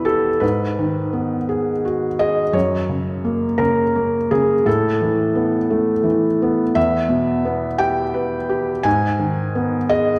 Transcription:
felt piano
Already playing: E2 B2 B3 E4 G4 B4 C#5
0.05 G4 A4
0.40 G#2 B4
0.79 D#3
1.13 B3
1.49 G#4
1.85 F#4
2.19 G#4 D#5
2.53 F#2 C#5
2.89 C#3
3.25 A#3
3.58 C#3 A#4
3.95 A#3
4.31 C#3 G#4
4.66 A2 A4
5.01 E3
5.35 B3
5.70 A3
6.03 E3
6.42 B3
6.75 E2 E5
7.09 B2
7.45 B3
7.78 G4 G5
8.14 B4
8.49 G4
8.83 G#2 G#5
9.19 D#3
9.55 B3
9.89 G#4 D#5

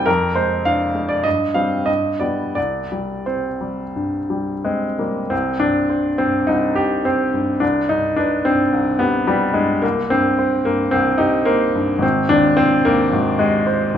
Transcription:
grand piano
Already playing: G3 C4 F5 G5
0.06 F2 A#4
0.35 G#3 C5
0.65 D4 F5
0.95 G#3
1.09 D5
1.24 G2 D#5
1.54 G3 C4 F5
1.86 G2 D#5
2.20 G3 B3 D5
2.55 C2 D5
2.92 G3
3.26 C4 C5
3.61 G3
3.96 G2
4.30 G3
4.65 G#3 C4
4.98 G3 A#3
5.30 C2 C4
5.60 G2 D4
5.90 C5
6.18 G2 C4
6.47 C2 D#4
6.76 G4
7.05 C4 C5
7.34 G2
7.60 C2 D4
7.89 G2 D#4
8.16 D4 B4
8.45 G2 C4
8.73 C2
8.99 B3 G4
9.27 G3 B4
9.54 G2 G#3
9.82 C2 A#3
10.10 G2 C4
10.39 C5
10.65 G2 A#3
10.91 C2 C4
11.18 D#4 G4
11.45 A#3 C5
11.75 G2
11.98 G#1 C4
12.29 D#2 D4
12.57 C4 C5
12.85 D#2 A#3
13.12 G#1
13.39 G#3 G4
13.67 C5
13.94 D#2

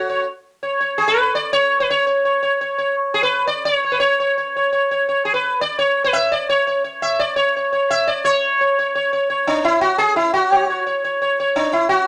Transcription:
sitar
Already playing: F#4
0.09 C#5
0.63 C#5
0.80 C#5
0.98 G#4
1.08 B4
1.35 D5
1.53 C#5
1.80 B4
1.90 C#5
2.07 C#5
2.25 C#5
2.43 C#5
2.61 C#5
2.78 C#5
3.14 G#4
3.23 B4
3.47 D5
3.65 C#5
3.85 C#5
3.92 B4
4.00 C#5
4.20 C#5
4.38 C#5
4.56 C#5
4.73 C#5
4.91 C#5
5.09 C#5
5.25 G#4
5.34 B4
5.61 D5
5.79 C#5
6.04 B4
6.13 E5
6.32 D5
6.49 C#5
6.67 C#5
6.84 C#5
7.02 E5
7.19 D5
7.36 C#5
7.57 C#5
7.73 C#5
7.91 E5
8.07 D5
8.24 C#5
8.61 C#5
8.79 C#5
8.95 C#5
9.13 C#5
9.30 C#5
9.47 D4
9.64 E4
9.81 F#4
9.98 G#4
10.16 E4
10.34 F#4
10.52 C#5
10.70 C#5
10.87 C#5
11.04 C#5
11.22 C#5
11.40 C#5
11.56 D4
11.73 E4
11.89 F#4

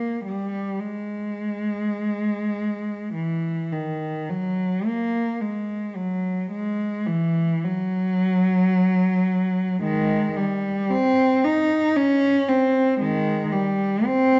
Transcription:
cello
Already playing: A#3
0.25 G3
0.79 G#3
3.14 E3
3.72 D#3
4.29 F#3
4.86 A#3
5.41 G#3
5.95 F#3
6.51 G#3
7.06 E3
7.64 F#3
9.82 D#3 G#3
10.37 G3
10.90 C4
11.44 D#4
11.96 C#4
12.48 C4
13.00 D#3 G#3
13.52 G3
14.05 C4

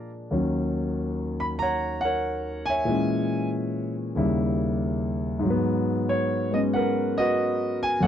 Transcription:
grand piano
Already playing: A#2 F3 G#3 D4
0.31 D#2 D#3 F#3 C#4
1.40 B5
1.59 C#5 F#5 A#5
2.01 A#4 F#5
2.05 C#5
2.66 G#5
2.70 C#5 E5
2.85 A#2 E3 G#3
2.90 C#4
4.15 D#2 C#3 G3 E4
5.39 G#2
5.43 F#3
5.50 B3
6.09 C#5
6.51 G#3 B3 C#4 D#5
6.73 A#4 B4 F#5
7.18 F#4 B4 D#5
7.83 G#5
8.00 F#2 F#3 A3 E4 C#5 F#5

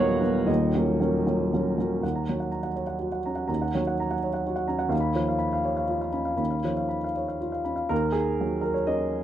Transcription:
upright piano
Already playing: D#1 D#2 C#5 D#5 F5 F#5
0.00 F#3 B3 A#4
0.22 F#3 B3 A#4
0.46 D#1 D#2 D#5
0.75 F#3 C#4 A#4
1.00 F#3 C#4 A#4
1.27 F#3 C#4 A#4
1.53 F#3 C#4 A#4
1.78 F#3 C#4 A#4
2.02 D#2 F#5
2.15 A#5
2.29 F#3 C#5
2.40 F#5
2.52 A#5
2.63 F#5
2.76 C#5
2.87 F#5
2.99 F#4
3.12 F#5
3.26 C#4 A#5
3.35 F#5
3.48 D#2 A#5
3.62 F#5
3.75 F#3 C#5
3.87 F#5
4.00 A#5
4.11 F#5
4.23 C#5
4.33 F#5
4.46 F#4
4.56 F#5
4.68 C#4 A#5
4.79 F#5
4.89 D#2 F5
5.00 B5
5.15 F3 C#5
5.28 F5
5.38 B5
5.53 F5
5.65 C#5
5.77 F5
5.89 F4
6.01 F5
6.13 C#4 B5
6.25 F5
6.36 D#2 B5
6.51 F5
6.64 F3 C#5
6.77 F5
6.89 B5
7.04 F5
7.16 C#5
7.28 F5
7.41 F4
7.52 F5
7.65 C#4 B5
7.76 F5
7.89 D#2 A#4
8.12 G#4
8.41 F#3
8.61 A#4
8.74 C#5
8.87 C#4 A#4 D#5

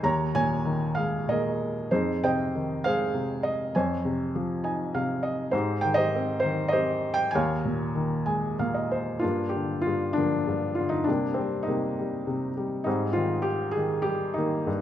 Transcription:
felt piano
0.03 D#2 C#5 A#5
0.34 A#2 C#5 G#5
0.65 D#3
0.95 G#3 F5
1.28 A#2 G#4 A#4 D#5
1.91 F2 D#4 G#4 C5
2.24 C3 C5 D#5 G5
2.55 D#3
2.84 G#3 G#4 C5 F5
3.14 C3
3.43 D#5
3.75 F2 C5 C#5 G#5
4.05 C3
4.35 F3
4.64 D#4 G#5
4.95 C3 F5
5.23 D#5
5.51 G#2 D#4 G4 C5
5.81 D#3 G5
5.94 G4 C5 D#5
6.15 C4
6.40 C5
6.44 D#3
6.68 G4 D#5
6.73 C4 C5
7.14 G5
7.31 G#5
7.35 D#2 C#5 F5
7.65 A#2
7.95 D#3
8.26 G#3 G#5
8.59 A#2 F5
8.74 D#5
8.91 C5
9.19 A#3 D4 F4
9.24 G2
9.49 G4
9.56 D3
9.81 F4
9.86 G2
10.13 D3 A#3 D4
10.18 F3
10.47 G2
10.75 F4
10.80 D3
10.89 D#4
11.04 C3 D4
11.09 G3 A#3
11.34 C4
11.38 G3
11.63 D#4
11.67 C3 G3 A#3
11.99 G3
12.27 C3
12.57 G3
12.84 G#2 G3 C4 D#4
13.13 D#3 F4
13.42 G4
13.71 G#4
13.76 D#3
14.02 G3 G4
14.34 D#3 D#4
14.38 A#3
14.67 G2

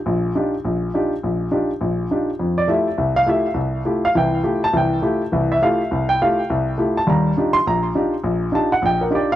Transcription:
grand piano
0.06 A#1
0.35 D4 D#4 F4 G4
0.64 A#1
0.94 D4 D#4 F4 G4
1.23 A#1
1.51 D4 D#4 F4 G4
1.81 A#1
2.11 D4 D#4 F4 G4
2.39 F2
2.58 D5
2.68 A3 E4 F4 G4 E5
2.98 C2
3.16 F5
3.26 A3 E4 F4 G4 E5
3.54 C2
3.85 A3 E4 F4 G4
4.05 F5
4.15 C2 E3 G5
4.43 A3 E4 F4 G4
4.64 A5
4.73 C2 E3
4.77 G5
5.02 A3 E4 F4 G4
5.32 C2 E3
5.52 E5
5.62 A3 E4 F4 G4 F5
5.91 C2
6.09 G5
6.22 A3 E4 F4 G4 F5
6.50 C2
6.78 A3 E4 F4 G4
6.97 A5
7.07 D#2 G3 A#5
7.37 D4 D#4 F4 G4
7.53 C6
7.67 A#1 A#5
7.95 D4 D#4 F4 G4
8.24 A#1
8.52 D4 D#4 F4 G4 A5
8.72 F#5
8.82 A#1 G5
9.01 A#4
9.10 D4 D#4 F4 G4
9.15 D5
9.32 F5

